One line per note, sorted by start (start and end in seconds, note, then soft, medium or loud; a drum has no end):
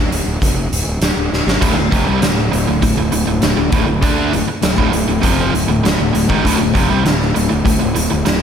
0.00 0.11 D1 medium
0.12 0.25 D1 medium
0.12 closed hi-hat medium
0.26 0.40 D1 medium
0.42 0.70 F1 medium
0.42 kick medium
0.42 closed hi-hat medium
0.71 0.86 D1 medium
0.71 closed hi-hat medium
0.87 1.00 D1 medium
1.01 1.16 D1 medium
1.01 snare loud
1.01 closed hi-hat medium
1.17 1.31 D1 medium
1.33 1.46 D1 medium
1.33 snare medium
1.46 1.61 G#1 medium
1.46 snare medium
1.62 1.76 D1 medium
1.62 1.77 D2 medium
1.62 1.77 A2 loud
1.62 kick loud
1.62 closed hi-hat medium
1.62 crash medium
1.77 1.91 D1 medium
1.77 1.92 D2 soft
1.77 1.93 A2 medium
1.92 2.06 F1 medium
1.92 2.07 F2 medium
1.92 2.07 C3 medium
1.92 kick loud
1.92 closed hi-hat medium
2.07 2.22 C2 medium
2.07 2.22 C3 medium
2.07 2.22 G3 medium
2.22 2.52 D1 medium
2.22 2.47 D2 medium
2.22 2.47 A2 medium
2.22 snare loud
2.22 closed hi-hat medium
2.38 snare soft
2.53 2.67 D1 medium
2.53 2.66 D2 medium
2.53 2.67 A2 medium
2.53 closed hi-hat medium
2.68 2.82 D1 medium
2.68 2.80 D2 medium
2.68 2.81 A2 medium
2.81 2.97 D1 medium
2.81 2.95 D2 medium
2.81 2.95 A2 medium
2.81 kick medium
2.81 closed hi-hat medium
2.96 3.12 D1 medium
2.96 3.09 D2 medium
2.96 3.10 A2 medium
3.11 3.27 D1 medium
3.11 3.24 D2 medium
3.11 3.25 A2 medium
3.11 closed hi-hat medium
3.25 3.42 D1 medium
3.25 3.40 D2 medium
3.25 3.40 A2 medium
3.41 3.57 D1 medium
3.41 3.56 D2 medium
3.41 3.56 A2 medium
3.41 snare loud
3.41 closed hi-hat medium
3.57 3.72 D1 medium
3.57 3.69 D2 soft
3.57 3.70 A2 medium
3.71 3.87 D1 medium
3.71 3.85 D2 medium
3.71 3.85 A2 loud
3.71 kick loud
3.71 closed hi-hat medium
3.86 4.02 D1 medium
3.86 4.02 D2 medium
3.86 4.01 A2 medium
4.01 4.31 D2 medium
4.01 4.31 D3 medium
4.01 4.31 A3 medium
4.01 4.32 D4 loud
4.01 kick loud
4.01 closed hi-hat medium
4.32 4.47 D1 medium
4.32 4.46 D2 medium
4.32 4.48 A2 medium
4.32 closed hi-hat medium
4.47 muted distorted electric guitar stroke medium
4.47 muted fingered electric bass stroke soft
4.62 4.77 D1 medium
4.62 4.75 D2 medium
4.62 4.76 A2 medium
4.62 snare loud
4.62 closed hi-hat medium
4.77 4.92 D1 medium
4.77 4.91 D2 medium
4.77 4.91 A2 medium
4.77 kick medium
4.92 5.08 D1 medium
4.92 5.08 D2 medium
4.92 5.08 A2 medium
4.92 closed hi-hat medium
5.09 5.23 D1 medium
5.09 5.22 D2 medium
5.09 5.23 A2 medium
5.22 5.52 F1 medium
5.22 5.52 F2 medium
5.22 5.53 C3 loud
5.22 5.53 F3 loud
5.22 kick medium
5.22 closed hi-hat medium
5.54 5.68 D1 medium
5.54 5.68 D2 medium
5.54 5.69 A2 medium
5.54 closed hi-hat medium
5.68 5.83 D1 medium
5.68 5.83 D2 medium
5.68 5.84 A2 medium
5.85 5.98 D1 medium
5.85 5.99 D2 medium
5.85 5.99 A2 medium
5.85 snare loud
5.85 closed hi-hat medium
5.99 6.13 D1 medium
5.99 6.15 D2 soft
5.99 6.15 A2 medium
6.14 6.28 D1 medium
6.14 6.29 D2 medium
6.14 6.30 A2 medium
6.14 closed hi-hat medium
6.30 6.44 G#1 medium
6.30 6.44 G#2 medium
6.30 6.44 D#3 loud
6.30 kick medium
6.45 6.59 D1 medium
6.45 6.59 D2 medium
6.45 6.59 A2 loud
6.45 kick medium
6.45 closed hi-hat medium
6.60 6.74 D1 medium
6.60 6.75 D2 medium
6.60 6.75 A2 medium
6.75 6.89 F1 medium
6.75 6.89 F2 medium
6.75 6.89 C3 medium
6.75 kick medium
6.75 closed hi-hat medium
6.90 7.04 C2 medium
6.90 7.04 C3 medium
6.90 7.04 G3 medium
7.05 7.33 D1 medium
7.05 7.29 D2 medium
7.05 7.29 A2 medium
7.05 snare loud
7.05 closed hi-hat medium
7.22 snare soft
7.36 7.50 D1 medium
7.36 7.48 D2 medium
7.36 7.48 A2 medium
7.36 closed hi-hat medium
7.49 7.65 D1 medium
7.49 7.63 D2 medium
7.49 7.63 A2 medium
7.65 7.79 D1 medium
7.65 7.78 D2 medium
7.65 7.78 A2 medium
7.65 kick medium
7.65 closed hi-hat medium
7.79 7.95 D1 medium
7.79 7.94 D2 medium
7.79 7.95 A2 medium
7.95 8.10 D1 medium
7.95 8.09 D2 medium
7.95 8.10 A2 medium
7.95 closed hi-hat medium
8.11 8.25 D1 medium
8.11 8.24 D2 medium
8.11 8.24 A2 medium
8.25 8.40 D1 medium
8.25 8.39 D2 medium
8.25 8.40 A2 medium
8.25 snare loud
8.25 closed hi-hat medium